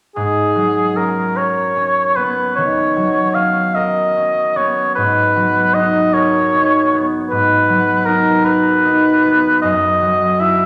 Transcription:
0.16 4.06 G#2 soft
0.16 0.98 G#4 soft
0.56 2.95 F#3 soft
0.96 1.75 C#4 soft
0.96 1.38 A#4 soft
1.37 3.75 A#4 soft
1.37 2.17 C#5 soft
1.76 3.35 C#4 soft
2.16 4.55 B3 soft
2.16 2.55 B4 soft
2.56 4.99 D#3 soft
2.56 3.36 C#5 soft
2.97 5.35 F#3 soft
3.35 4.16 C#4 soft
3.35 3.76 F5 soft
3.75 6.12 A#4 soft
3.75 4.58 D#5 soft
4.17 5.00 C#4 soft
4.56 6.90 B3 soft
4.56 4.95 C#5 soft
4.95 7.30 G#2 soft
4.95 5.76 B4 soft
5.36 7.68 F#3 soft
5.74 6.53 D#4 soft
5.74 6.15 D#5 medium
6.13 8.44 A#4 soft
6.13 7.03 C#5 medium
6.54 8.07 D#4 soft
6.92 9.23 B3 soft
7.30 9.67 G#2 soft
7.30 8.07 B4 medium
7.69 10.00 F#3 soft
8.06 8.84 D#4 soft
8.06 8.47 A#4 soft
8.45 10.66 A#4 soft
8.45 9.61 B4 medium
8.85 9.66 D#4 soft
9.25 9.66 B3 soft
9.61 10.66 F#2 soft
9.61 10.42 D#5 medium
10.02 10.66 F#3 soft
10.40 10.66 E4 soft
10.40 10.66 E5 soft

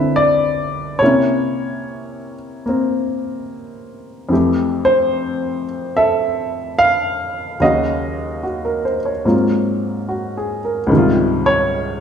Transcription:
0.00 1.01 C2 soft
0.00 1.01 C3 soft
0.00 1.01 D3 soft
0.00 1.02 G3 soft
0.00 1.02 C4 soft
0.00 1.02 E4 soft
0.00 0.98 B4 medium
0.00 1.03 C5 medium
0.00 0.21 E5 medium
0.16 1.02 D5 medium
0.99 4.31 C3 medium
0.99 2.64 A#3 medium
0.99 2.34 C#5 medium
1.03 4.32 C#4 medium
1.03 2.63 E4 medium
2.66 4.31 A#3 soft
2.66 4.32 C4 soft
4.29 7.59 F2 medium
4.29 7.60 E3 soft
4.29 7.61 A3 soft
4.33 7.62 G4 medium
4.85 5.64 C5 medium
5.97 7.57 A4 medium
5.97 6.81 E5 medium
6.79 7.57 F5 loud
7.60 9.25 D#2 medium
7.60 9.25 C#3 soft
7.60 9.24 F#3 soft
7.60 8.42 F#4 medium
7.60 8.95 D#5 medium
7.60 9.26 F5 medium
8.43 8.82 F#4 soft
8.65 8.99 A#4 soft
8.85 9.10 C5 soft
9.05 9.34 C#5 soft
9.25 10.87 G#2 soft
9.25 10.90 F#3 soft
9.25 10.90 A#3 soft
9.25 10.90 C4 soft
9.25 10.91 F4 medium
10.09 10.60 F#4 soft
10.37 10.79 G#4 soft
10.65 11.07 A#4 soft
10.87 12.00 C#2 medium
10.87 12.00 G#2 medium
10.91 12.00 D#3 medium
10.91 12.00 G3 medium
10.95 12.00 C3 medium
10.95 12.00 F4 medium
11.46 12.00 C#5 medium

